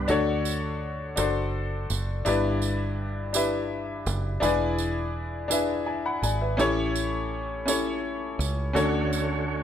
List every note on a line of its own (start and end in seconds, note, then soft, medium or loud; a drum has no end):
0.00 0.11 G2 medium
0.00 0.08 D4 medium
0.00 0.12 G4 medium
0.00 0.11 B4 medium
0.00 0.11 D5 medium
0.08 1.14 D2 loud
0.08 1.14 D3 medium
0.08 0.86 D4 loud
0.08 0.86 F#4 medium
0.08 0.87 A4 medium
0.08 0.87 C#5 medium
0.08 0.88 D5 loud
0.08 tambourine soft
0.45 tambourine medium
1.16 1.86 F#1 loud
1.16 1.94 D4 medium
1.16 1.95 F#4 medium
1.16 1.95 A4 medium
1.16 1.95 C5 medium
1.16 1.96 D5 medium
1.16 tambourine loud
1.90 2.23 F#1 medium
1.90 tambourine medium
2.25 4.03 G1 medium
2.25 3.31 G2 medium
2.25 3.03 D4 loud
2.25 3.03 E4 medium
2.25 3.03 G4 medium
2.25 3.04 B4 medium
2.25 3.04 D5 loud
2.25 tambourine medium
2.62 tambourine soft
3.33 4.11 D4 medium
3.33 4.11 E4 medium
3.33 4.12 G4 medium
3.33 4.12 B4 medium
3.33 4.12 E5 medium
3.33 tambourine loud
4.06 4.40 F#1 loud
4.06 tambourine medium
4.40 6.19 E1 loud
4.40 5.47 E3 medium
4.40 5.18 D4 loud
4.40 5.19 E4 medium
4.40 5.19 G#4 medium
4.40 5.20 B4 medium
4.40 tambourine medium
4.44 5.20 D5 loud
4.79 tambourine soft
5.48 6.26 D4 medium
5.48 6.27 E4 medium
5.48 6.27 G#4 medium
5.48 5.87 B4 medium
5.48 tambourine loud
5.52 5.88 E5 loud
5.86 6.04 D5 medium
5.86 6.04 G#5 medium
6.06 6.23 F#5 medium
6.06 6.22 B5 medium
6.22 6.56 G#1 medium
6.22 6.41 D5 medium
6.22 6.40 G#5 medium
6.22 tambourine medium
6.41 6.76 B4 medium
6.41 6.75 E5 medium
6.57 8.35 A1 medium
6.57 7.63 A2 medium
6.57 7.35 C#4 medium
6.57 7.36 E4 medium
6.57 7.36 G4 medium
6.57 7.36 A4 medium
6.57 7.37 C#5 loud
6.57 tambourine medium
6.96 tambourine medium
7.66 8.43 C#4 medium
7.66 8.44 E4 medium
7.66 8.44 G4 medium
7.66 8.45 A4 medium
7.66 8.45 C#5 medium
7.66 tambourine loud
8.39 8.72 C#2 loud
8.39 tambourine medium
8.73 9.63 D2 loud
8.73 9.63 D3 medium
8.73 9.63 A3 medium
8.73 9.51 C#4 medium
8.73 9.52 D4 medium
8.73 9.52 F#4 medium
8.73 9.63 F#4 medium
8.73 9.52 A4 medium
8.73 9.63 C#5 medium
8.73 9.53 C#5 loud
8.73 tambourine medium
9.13 tambourine soft